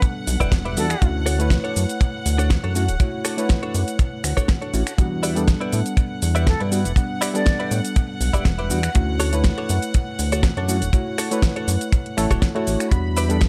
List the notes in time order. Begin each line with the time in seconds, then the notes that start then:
Already playing: G3 B3 D4 A4 F#5
0.02 muted clean electric guitar stroke, kick, closed hi-hat, shaker
0.27 B1, open hi-hat, shaker
0.40 E1 E4 G4 B4 D5, kick, closed hi-hat, shaker
0.52 E1, kick, snare, closed hi-hat, shaker
0.65 E4 G4 B4 D5, closed hi-hat
0.77 E2 G3 B3 D4 F#4 A4, open hi-hat, shaker
0.90 finger snap, closed hi-hat, shaker
1.01 D2 A3 C#4 E4 F#4, kick, closed hi-hat, shaker
1.26 D4 F#4 A4 C#5, open hi-hat, shaker
1.39 A3 E4 B4 C#5, closed hi-hat, shaker
1.50 kick, snare, closed hi-hat, shaker
1.64 D4 F#4 A4 C#5, closed hi-hat
1.76 F#2, open hi-hat, shaker
1.89 closed hi-hat, shaker
2.00 muted clean electric guitar stroke, kick, closed hi-hat, shaker
2.26 D2, open hi-hat, shaker
2.38 D4 F#4 A4 C#5, closed hi-hat, shaker
2.50 kick, snare, closed hi-hat, shaker
2.64 F#2 D4 F#4 A4 C#5, closed hi-hat
2.75 A3 C#4 E4 F#4, open hi-hat, shaker
2.88 D1, closed hi-hat, shaker
3.00 A3 E4 F#4 C#5, kick, closed hi-hat, shaker
3.25 D4 F#4 A4 C#5, finger snap, open hi-hat, shaker
3.37 A3 E4 B4 C#5, closed hi-hat, shaker
3.49 kick, snare, closed hi-hat, shaker
3.63 D4 F#4 A4 C#5, closed hi-hat
3.74 F#2, open hi-hat, shaker
3.88 closed hi-hat, shaker
3.99 muted clean electric guitar stroke, kick, closed hi-hat, shaker
4.24 D2, finger snap, open hi-hat, shaker
4.37 D4 F#4 A4 C#5, kick, closed hi-hat, shaker
4.48 kick, snare, closed hi-hat, shaker
4.62 D4 F#4 A4 C#5, closed hi-hat
4.73 A1 A3 C#4 E4 F#4, open hi-hat, shaker
4.87 finger snap, closed hi-hat, shaker
4.98 E2 G3 B3 D4 F#4 F#5, kick, closed hi-hat, shaker
5.23 E4 G4 B4 D5, open hi-hat, shaker
5.35 G3 B3 D4 A4, closed hi-hat, shaker
5.48 kick, snare, closed hi-hat, shaker
5.60 E4 G4 B4 D5, closed hi-hat
5.73 A2, open hi-hat, shaker
5.86 closed hi-hat, shaker
5.97 muted clean electric guitar stroke, kick, closed hi-hat, shaker
6.22 E2, open hi-hat, shaker
6.35 E4 G4 B4 D5, closed hi-hat, shaker
6.47 A4, kick, snare, closed hi-hat, shaker
6.60 G2 E4 G4 B4 D5, closed hi-hat
6.71 G3 B3 D4 F#4, open hi-hat, shaker
6.85 E1, closed hi-hat, shaker
6.96 G3 B3 D4 F#5, kick, closed hi-hat, shaker
7.21 E4 G4 B4 D5, finger snap, open hi-hat, shaker
7.34 G3 B3 D4 A4 D5, closed hi-hat, shaker
7.46 kick, snare, closed hi-hat, shaker
7.59 E4 G4 B4 D5, closed hi-hat
7.71 A2, open hi-hat, shaker
7.85 closed hi-hat, shaker
7.96 muted clean electric guitar stroke, kick, closed hi-hat, shaker
8.21 B1, open hi-hat, shaker
8.33 E1 E4 G4 B4 D5, kick, closed hi-hat, shaker
8.45 E1, kick, snare, closed hi-hat, shaker
8.58 E4 G4 B4 D5, closed hi-hat
8.70 E2 G3 B3 D4 F#4, open hi-hat, shaker
8.83 finger snap, closed hi-hat, shaker
8.94 D2 A3 C#4 E4 F#4, kick, closed hi-hat, shaker
9.20 D4 F#4 A4 C#5, open hi-hat, shaker
9.33 A3 E4 B4 C#5, closed hi-hat, shaker
9.44 kick, snare, closed hi-hat, shaker
9.58 D4 F#4 A4 C#5, closed hi-hat
9.69 F#2, open hi-hat, shaker
9.82 closed hi-hat, shaker
9.94 muted clean electric guitar stroke, kick, closed hi-hat, shaker
10.19 D2, open hi-hat, shaker
10.32 D4 F#4 A4 C#5, closed hi-hat, shaker
10.43 kick, snare, closed hi-hat, shaker
10.57 F#2 D4 F#4 A4 C#5, closed hi-hat
10.68 A3 C#4 E4 F#4, open hi-hat, shaker
10.82 D1, closed hi-hat, shaker
10.93 A3 E4 F#4 C#5, kick, closed hi-hat, shaker
11.18 D4 F#4 A4 C#5, finger snap, open hi-hat, shaker
11.31 A3 E4 B4 C#5, closed hi-hat, shaker
11.42 kick, snare, closed hi-hat, shaker
11.56 D4 F#4 A4 C#5, closed hi-hat
11.68 F#2, open hi-hat, shaker
11.81 closed hi-hat, shaker
11.92 muted clean electric guitar stroke, kick, closed hi-hat, shaker
12.06 closed hi-hat
12.17 A1 A3 E4 A4 C#5, finger snap, open hi-hat, shaker
12.31 D1 D4 F#4 A4 C#5, kick, closed hi-hat, shaker
12.42 kick, snare, closed hi-hat, shaker
12.55 A3 D4 E4 F#4 A4 C#5, closed hi-hat
12.67 A1, open hi-hat, shaker
12.80 finger snap, closed hi-hat, shaker
12.91 E2 G3 B3 D4 F#4 B5, kick, closed hi-hat, shaker
13.17 E4 G4 B4 D5, open hi-hat, shaker
13.29 G3 B3 D4 A4, closed hi-hat, shaker
13.41 kick, snare, closed hi-hat, shaker